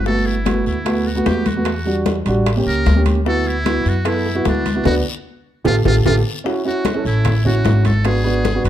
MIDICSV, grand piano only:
0, 0, Header, 1, 2, 480
1, 0, Start_track
1, 0, Tempo, 399202
1, 79, Time_signature, 4, 2, 24, 8
1, 10452, End_track
2, 0, Start_track
2, 0, Title_t, "Grand piano"
2, 0, Program_c, 0, 0
2, 63, Note_on_c, 0, 57, 74
2, 79, Note_on_c, 0, 59, 63
2, 90, Note_on_c, 0, 66, 77
2, 407, Note_off_c, 0, 57, 0
2, 415, Note_off_c, 0, 59, 0
2, 421, Note_off_c, 0, 66, 0
2, 540, Note_on_c, 0, 57, 63
2, 551, Note_on_c, 0, 59, 59
2, 568, Note_on_c, 0, 66, 73
2, 886, Note_off_c, 0, 57, 0
2, 892, Note_off_c, 0, 59, 0
2, 900, Note_off_c, 0, 66, 0
2, 1019, Note_on_c, 0, 57, 68
2, 1026, Note_on_c, 0, 59, 67
2, 1040, Note_on_c, 0, 66, 80
2, 1282, Note_off_c, 0, 57, 0
2, 1285, Note_off_c, 0, 59, 0
2, 1292, Note_off_c, 0, 66, 0
2, 1383, Note_on_c, 0, 57, 70
2, 1395, Note_on_c, 0, 59, 68
2, 1410, Note_on_c, 0, 66, 81
2, 1728, Note_off_c, 0, 57, 0
2, 1734, Note_off_c, 0, 59, 0
2, 1742, Note_off_c, 0, 66, 0
2, 1874, Note_on_c, 0, 57, 67
2, 1883, Note_on_c, 0, 59, 60
2, 1892, Note_on_c, 0, 66, 72
2, 1997, Note_off_c, 0, 57, 0
2, 2002, Note_off_c, 0, 59, 0
2, 2006, Note_off_c, 0, 66, 0
2, 2229, Note_on_c, 0, 55, 66
2, 2245, Note_on_c, 0, 62, 60
2, 2249, Note_on_c, 0, 66, 73
2, 2572, Note_off_c, 0, 55, 0
2, 2579, Note_off_c, 0, 62, 0
2, 2582, Note_off_c, 0, 66, 0
2, 2721, Note_on_c, 0, 55, 78
2, 2738, Note_on_c, 0, 62, 73
2, 2746, Note_on_c, 0, 66, 84
2, 2962, Note_off_c, 0, 55, 0
2, 2970, Note_off_c, 0, 62, 0
2, 2974, Note_off_c, 0, 66, 0
2, 3076, Note_on_c, 0, 58, 70
2, 3093, Note_on_c, 0, 61, 63
2, 3099, Note_on_c, 0, 67, 81
2, 3415, Note_off_c, 0, 58, 0
2, 3424, Note_off_c, 0, 61, 0
2, 3427, Note_off_c, 0, 67, 0
2, 3543, Note_on_c, 0, 58, 70
2, 3560, Note_on_c, 0, 61, 67
2, 3570, Note_on_c, 0, 67, 79
2, 3805, Note_off_c, 0, 58, 0
2, 3813, Note_off_c, 0, 61, 0
2, 3818, Note_off_c, 0, 67, 0
2, 3907, Note_on_c, 0, 59, 74
2, 3916, Note_on_c, 0, 64, 70
2, 3933, Note_on_c, 0, 66, 78
2, 4251, Note_off_c, 0, 59, 0
2, 4255, Note_off_c, 0, 64, 0
2, 4264, Note_off_c, 0, 66, 0
2, 4378, Note_on_c, 0, 59, 67
2, 4395, Note_on_c, 0, 64, 66
2, 4400, Note_on_c, 0, 66, 73
2, 4727, Note_off_c, 0, 59, 0
2, 4735, Note_off_c, 0, 64, 0
2, 4738, Note_off_c, 0, 66, 0
2, 4866, Note_on_c, 0, 59, 73
2, 4874, Note_on_c, 0, 64, 70
2, 4883, Note_on_c, 0, 69, 76
2, 5127, Note_off_c, 0, 59, 0
2, 5131, Note_off_c, 0, 64, 0
2, 5135, Note_off_c, 0, 69, 0
2, 5220, Note_on_c, 0, 59, 72
2, 5232, Note_on_c, 0, 64, 68
2, 5238, Note_on_c, 0, 66, 78
2, 5568, Note_off_c, 0, 59, 0
2, 5573, Note_off_c, 0, 64, 0
2, 5576, Note_off_c, 0, 66, 0
2, 5709, Note_on_c, 0, 59, 67
2, 5716, Note_on_c, 0, 64, 60
2, 5731, Note_on_c, 0, 66, 69
2, 5816, Note_off_c, 0, 59, 0
2, 5817, Note_off_c, 0, 66, 0
2, 5834, Note_on_c, 0, 59, 85
2, 5835, Note_on_c, 0, 66, 81
2, 5838, Note_on_c, 0, 62, 86
2, 5839, Note_off_c, 0, 64, 0
2, 5991, Note_off_c, 0, 59, 0
2, 5992, Note_off_c, 0, 66, 0
2, 5993, Note_off_c, 0, 62, 0
2, 6786, Note_on_c, 0, 67, 86
2, 6788, Note_on_c, 0, 65, 88
2, 6792, Note_on_c, 0, 69, 88
2, 6946, Note_off_c, 0, 67, 0
2, 6947, Note_off_c, 0, 65, 0
2, 6950, Note_off_c, 0, 69, 0
2, 7036, Note_on_c, 0, 69, 85
2, 7042, Note_on_c, 0, 67, 84
2, 7043, Note_on_c, 0, 65, 89
2, 7192, Note_off_c, 0, 69, 0
2, 7196, Note_off_c, 0, 65, 0
2, 7196, Note_off_c, 0, 67, 0
2, 7280, Note_on_c, 0, 67, 80
2, 7282, Note_on_c, 0, 69, 82
2, 7285, Note_on_c, 0, 65, 81
2, 7434, Note_off_c, 0, 67, 0
2, 7436, Note_off_c, 0, 69, 0
2, 7437, Note_off_c, 0, 65, 0
2, 7745, Note_on_c, 0, 61, 76
2, 7759, Note_on_c, 0, 64, 71
2, 7771, Note_on_c, 0, 66, 84
2, 7921, Note_off_c, 0, 61, 0
2, 7928, Note_off_c, 0, 64, 0
2, 7934, Note_off_c, 0, 66, 0
2, 7994, Note_on_c, 0, 61, 78
2, 7999, Note_on_c, 0, 64, 71
2, 8017, Note_on_c, 0, 66, 84
2, 8250, Note_off_c, 0, 61, 0
2, 8252, Note_off_c, 0, 64, 0
2, 8261, Note_off_c, 0, 66, 0
2, 8349, Note_on_c, 0, 61, 72
2, 8359, Note_on_c, 0, 64, 62
2, 8371, Note_on_c, 0, 69, 75
2, 8775, Note_off_c, 0, 61, 0
2, 8780, Note_off_c, 0, 64, 0
2, 8785, Note_off_c, 0, 69, 0
2, 8955, Note_on_c, 0, 61, 73
2, 8967, Note_on_c, 0, 64, 68
2, 8976, Note_on_c, 0, 66, 86
2, 9461, Note_off_c, 0, 61, 0
2, 9467, Note_off_c, 0, 64, 0
2, 9472, Note_off_c, 0, 66, 0
2, 9666, Note_on_c, 0, 59, 70
2, 9681, Note_on_c, 0, 62, 58
2, 9692, Note_on_c, 0, 66, 72
2, 9841, Note_off_c, 0, 59, 0
2, 9848, Note_off_c, 0, 62, 0
2, 9853, Note_off_c, 0, 66, 0
2, 9905, Note_on_c, 0, 59, 80
2, 9919, Note_on_c, 0, 62, 70
2, 9924, Note_on_c, 0, 66, 82
2, 10164, Note_off_c, 0, 59, 0
2, 10171, Note_off_c, 0, 62, 0
2, 10173, Note_off_c, 0, 66, 0
2, 10268, Note_on_c, 0, 59, 72
2, 10280, Note_on_c, 0, 62, 64
2, 10290, Note_on_c, 0, 66, 79
2, 10452, Note_off_c, 0, 59, 0
2, 10452, Note_off_c, 0, 62, 0
2, 10452, Note_off_c, 0, 66, 0
2, 10452, End_track
0, 0, End_of_file